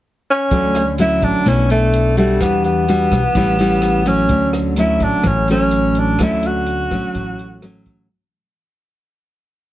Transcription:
0.30 tenor saxophone C#4
0.51 upright bass D2, nylon-string guitar D3 F#3 A3 C#4, kick, closed hi-hat
0.75 cross-stick, closed hi-hat
0.98 nylon-string guitar F#3 A3 C#4, tenor saxophone E4, closed hi-hat
1.22 upright bass A1, tenor saxophone D4, kick, closed hi-hat
1.46 upright bass B1, nylon-string guitar B2 A3 D4 E4, tenor saxophone C#4, kick, cross-stick, closed hi-hat
1.70 nylon-string guitar A3 D4 E4, tenor saxophone A3, closed hi-hat
1.94 closed hi-hat
2.17 nylon-string guitar G3 D4 F#4, tenor saxophone A3, closed hi-hat
2.40 upright bass E2, nylon-string guitar E3, tenor saxophone B3, kick, cross-stick, closed hi-hat
2.64 tenor saxophone B3, closed hi-hat
2.88 nylon-string guitar G3 D4 F#4, closed hi-hat
3.11 upright bass B1, kick, cross-stick, closed hi-hat
3.35 upright bass A1, nylon-string guitar A2 G3 C#4 E4, kick, closed hi-hat
3.59 nylon-string guitar G3 C#4 E4, closed hi-hat
3.82 cross-stick, closed hi-hat
4.05 nylon-string guitar F#3 A3 C#4, tenor saxophone C#4, closed hi-hat
4.29 upright bass D2, nylon-string guitar D3, kick, closed hi-hat
4.53 cross-stick, closed hi-hat
4.76 nylon-string guitar F#3 A3 C#4, tenor saxophone E4, closed hi-hat
5.00 upright bass A1, tenor saxophone D4, kick, closed hi-hat
5.23 upright bass A1, nylon-string guitar A2, tenor saxophone C#4, kick, cross-stick, closed hi-hat
5.48 nylon-string guitar F#3 A3 C#4, tenor saxophone C#4, closed hi-hat
5.71 closed hi-hat
5.95 closed hi-hat
5.99 tenor saxophone D4
6.19 upright bass D2, nylon-string guitar D3 F#3 A3 C#4, tenor saxophone E4, kick, cross-stick, closed hi-hat
6.43 tenor saxophone F#4, closed hi-hat
6.66 closed hi-hat
6.91 upright bass A1, nylon-string guitar F#3 A3 C#4, kick, cross-stick, closed hi-hat
7.14 upright bass A1, nylon-string guitar A2, kick, closed hi-hat
7.39 closed hi-hat
7.62 nylon-string guitar F#3 A3 C#4, cross-stick, closed hi-hat
7.86 kick, closed hi-hat

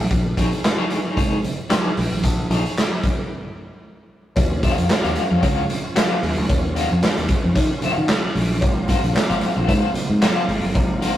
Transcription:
0.00 high conga
0.11 fingered electric bass A#1, kick, closed hi-hat
0.37 fingered electric bass A#1, clean electric guitar D#4 G#4 C#5, kick, closed hi-hat, muted conga
0.52 closed hi-hat
0.64 snare, clap, closed hi-hat, high conga
0.78 clean electric guitar D#4 G#4 C#5
0.90 closed hi-hat, muted conga
1.05 clean electric guitar D#4 G#4 C#5
1.16 fingered electric bass G#1, clean electric guitar D#4 G#4 C#5, kick, closed hi-hat, muted conga, low conga
1.43 closed hi-hat, muted conga, low conga
1.70 clean electric guitar D#4 G#4 C#5, snare, clap, closed hi-hat, high conga
1.85 high conga
1.97 fingered electric bass A#1, open hi-hat
2.11 fingered electric bass A1, high conga
2.24 fingered electric bass A#1, kick, closed hi-hat
2.50 fingered electric bass A#1, clean electric guitar D#4 G#4 C#5, closed hi-hat, muted conga
2.66 closed hi-hat
2.77 snare, clap, closed hi-hat, high conga
3.03 kick, closed hi-hat, muted conga
4.36 fingered electric bass D#2, tonewheel organ F#3 C#4 F4, kick, closed hi-hat, cowbell
4.63 clean electric guitar F#4 C#5 F5, kick, closed hi-hat, muted conga
4.78 fingered electric bass F2, closed hi-hat
4.89 snare, clap, closed hi-hat, cowbell, high conga
5.04 fingered electric bass D#2, clean electric guitar F#4 C#5 F5, closed hi-hat
5.15 closed hi-hat, muted conga
5.30 fingered electric bass F2, clean electric guitar F#4 C#5 F5
5.42 fingered electric bass C#2, clean electric guitar F#4 C#5 F5, kick, closed hi-hat, cowbell, muted conga, low conga
5.70 closed hi-hat, muted conga, low conga
5.96 clean electric guitar F#4 C#5 F5, snare, clap, closed hi-hat, cowbell, high conga
6.23 fingered electric bass D#2, open hi-hat
6.38 fingered electric bass D2, high conga
6.49 fingered electric bass D#2, kick, closed hi-hat, cowbell
6.75 clean electric guitar F#4 C#5 F5, closed hi-hat, muted conga
6.91 fingered electric bass F2
7.03 snare, clap, closed hi-hat, cowbell, high conga
7.17 fingered electric bass D#2, closed hi-hat
7.28 kick, closed hi-hat, muted conga
7.44 fingered electric bass F2
7.55 fingered electric bass D#3, kick, closed hi-hat, cowbell
7.82 clean electric guitar F#4 C#5 F5, muted fingered electric bass stroke, closed hi-hat, muted conga, low conga
7.98 fingered electric bass D#3
8.08 snare, clap, closed hi-hat, cowbell, high conga
8.24 muted fingered electric bass stroke
8.35 fingered electric bass A#1, open hi-hat
8.51 high conga
8.61 fingered electric bass G#1, tonewheel organ A#3 C4 F4, kick, closed hi-hat, cowbell
8.88 clean electric guitar F#4 C5 F5, kick, closed hi-hat, muted conga
9.03 fingered electric bass A#1, closed hi-hat
9.15 snare, clap, closed hi-hat, cowbell, high conga
9.30 fingered electric bass G#1, clean electric guitar F#4 C5 F5, closed hi-hat
9.41 closed hi-hat, muted conga
9.56 fingered electric bass A#1, clean electric guitar F#4 C5 F5
9.67 fingered electric bass G#2, clean electric guitar F#4 C5 F5, kick, closed hi-hat, cowbell, low conga
9.94 muted fingered electric bass stroke, closed hi-hat, muted conga, low conga
10.09 fingered electric bass G#2
10.22 clean electric guitar F#4 C5 F5, snare, clap, closed hi-hat, cowbell, high conga
10.48 fingered electric bass G#1, open hi-hat
10.64 fingered electric bass G1, high conga
10.75 fingered electric bass G#1, kick, closed hi-hat, cowbell
11.01 clean electric guitar F#4 C5 F5, closed hi-hat, muted conga

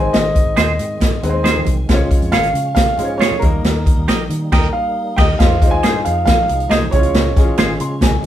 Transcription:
Already playing: fingered electric bass G#1, tonewheel organ D#3 G#3 C4, upright piano G#3 C4 D#4 C5, grand piano G#5
0.13 fingered electric bass G#1, grand piano D#5, snare, closed hi-hat
0.35 kick, closed hi-hat, muted conga
0.46 fingered electric bass G#1
0.56 fingered electric bass D#2, clean electric guitar D#4 G#4 C5, grand piano D#5, snare, closed hi-hat, muted conga
0.79 fingered electric bass G#2, closed hi-hat, muted conga
1.00 fingered electric bass G#2, kick, snare, closed hi-hat, muted conga, high conga, low conga
1.23 fingered electric bass D#2, upright piano G#3 C4 D#4 B4, closed hi-hat
1.30 upright piano C5
1.44 clean electric guitar D#4 G#4 C5, snare, closed hi-hat, muted conga, high conga
1.56 high conga, low conga
1.65 fingered electric bass C2, kick, closed hi-hat, low conga
1.89 fingered electric bass C#2, tonewheel organ F3 C#4, upright piano G#3 C#4 F4 C5, kick, snare, closed hi-hat, muted conga
1.95 upright piano C#5
2.11 kick, closed hi-hat, muted conga
2.22 fingered electric bass F2, closed hi-hat
2.32 fingered electric bass G#1, clean electric guitar F4 G#4 C#5, grand piano F5, snare, closed hi-hat, muted conga
2.43 closed hi-hat
2.54 fingered electric bass C#3, closed hi-hat, muted conga
2.75 grand piano F5, kick, snare, closed hi-hat, muted conga, high conga, low conga
2.98 fingered electric bass G#2, upright piano G#3 C#4 F4 C5, closed hi-hat, muted conga
3.04 upright piano C#5
3.18 clean electric guitar F4 G#4 C#5, grand piano C#5, snare, closed hi-hat, muted conga, high conga
3.32 high conga, low conga
3.39 fingered electric bass D#2, upright piano G3 A#3 D#4, grand piano A#4, kick, closed hi-hat, muted conga, low conga
3.43 tonewheel organ G3 A#3 D#4, upright piano A#4
3.64 fingered electric bass D#2, snare, closed hi-hat
3.86 kick, closed hi-hat, muted conga
3.97 fingered electric bass D#2
4.07 fingered electric bass A#1, clean electric guitar G4 A#4 D#5, snare, closed hi-hat
4.30 fingered electric bass D#3, closed hi-hat
4.52 fingered electric bass D#2, clean electric guitar G4 A#4 D#5, upright piano A#4 G5, kick, snare, crash
4.73 grand piano F5
5.16 fingered electric bass D#2, clean electric guitar G4 A#4 D#5, upright piano G4 D#5, grand piano G5, kick, snare, crash
5.39 fingered electric bass F2, tonewheel organ F3 G#3 D#4, upright piano G#3 D#4 F4 C5, grand piano F5, kick, snare, closed hi-hat, muted conga
5.61 fingered electric bass D#2, upright piano G#3 D#4 F4 C5, kick, closed hi-hat, muted conga
5.71 grand piano G#5
5.83 fingered electric bass G2, clean electric guitar D#4 G#4 C5, snare, closed hi-hat, muted conga
6.05 fingered electric bass F2, grand piano F5, closed hi-hat
6.25 fingered electric bass F3, grand piano F5, kick, snare, closed hi-hat, muted conga, high conga, low conga
6.48 fingered electric bass C2, closed hi-hat, muted conga
6.60 closed hi-hat
6.69 fingered electric bass C2, clean electric guitar D#4 G#4 C5, grand piano D#5, snare, closed hi-hat, high conga
6.82 high conga, low conga
6.91 fingered electric bass C#2, tonewheel organ G#3 C#4, upright piano G#3 C#4 E4 C#5, grand piano C#5, kick, closed hi-hat
6.99 upright piano F4
7.03 closed hi-hat
7.14 fingered electric bass C#2, snare, closed hi-hat, muted conga
7.36 fingered electric bass G#1, upright piano G#3 C#4 E4 G#4, kick, snare, closed hi-hat, muted conga
7.42 upright piano F4
7.57 fingered electric bass G#1, clean electric guitar F4 G#4 C5, snare, closed hi-hat
7.80 fingered electric bass C#3, upright piano C6, closed hi-hat, muted conga
8.01 fingered electric bass C#2, upright piano G#5, kick, snare, closed hi-hat, muted conga, high conga, low conga
8.23 fingered electric bass D#2, muted conga

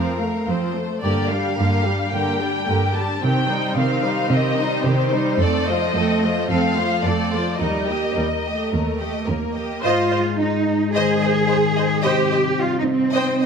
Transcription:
Already playing: cello section F2, viola section F3 C4, violin section A#4 F5
0.19 viola section A3
0.47 cello section F2, viola section F3 C4, violin section C5
0.75 viola section A3
1.02 cello section G2, viola section D3 A#3, violin section G4 A#4 D5
1.30 viola section G3, violin section D4 G4 F5
1.58 cello section G2, viola section D3 A#3, violin section G4 A#4
1.85 viola section G3, violin section D4 G4
2.12 cello section G2, viola section D3 A#3, violin section G4 A#4 G5
2.39 viola section G3, violin section D4 G4
2.66 cello section G2, viola section D3 A#3, violin section G4 A#4
2.93 viola section G3, violin section D4 G4 A5
3.21 cello section C3, viola section D#3 C4, violin section C4 G4 G5
3.49 viola section G3 D#4, violin section D#4 C5
3.77 cello section C3, viola section D#3 C4, violin section C4 G4 F5
4.03 viola section G3 D#4, violin section D#4 C5
4.30 cello section C3, viola section D#3 C4, violin section C4 G4 D#5
4.57 viola section G3 D#4, violin section D#4 C5
4.85 cello section C3, viola section D#3 C4, violin section C4 G4 C5
5.11 viola section G3 D#4, violin section D#4 C5
5.39 cello section F2, viola section A3 C4, violin section A4 D5
5.67 viola section F3 A3, violin section F4 C5 D#5
5.96 cello section F2, viola section A3 C4, violin section A4
6.22 viola section F3 A3, violin section F4 C5
6.49 cello section F2, viola section A3 C4, violin section A4 F5
6.76 viola section F3 A3, violin section F4 C5
7.04 cello section F2, viola section A3 C4, violin section A4 D5
7.32 viola section F3 A3, violin section F4 C5
7.59 cello section D#2, viola section G3 D#4, violin section A#4 D#5
7.88 viola section A#3 G4, violin section G4 D#5
8.15 cello section D#2, viola section G3, violin section A#4
8.44 viola section A3, violin section G4 D#5
8.73 cello section D#2, violin section A#4
8.99 violin section G4 D#5
9.27 cello section D#2, viola section A#3, violin section A#4
9.55 violin section G4 D#5
9.83 harp G#2, french horn section G#3, cello section F4, viola section C5, violin section D#5
10.11 harp G#3, viola section C5, violin section D#5
10.39 cello section D#4, harp C5
10.67 harp D#4
10.95 harp D#3, cello section G#4, viola section C5, violin section D#5
11.21 harp G#3, viola section C5, violin section D#5
11.48 violin section C5 D#5, viola section C5
11.76 harp D#4, viola section C5, violin section D#5
12.03 harp C3, french horn section C4, cello section G4, viola section C5, violin section D#5 G5
12.32 harp G3, viola section C5, violin section D#5 G5
12.60 cello section F4, harp D#5
12.79 cello section D#4
12.87 cello section C4, harp D#4
13.14 harp C4, viola section C5, violin section D#5 G5
13.42 violin section D#5

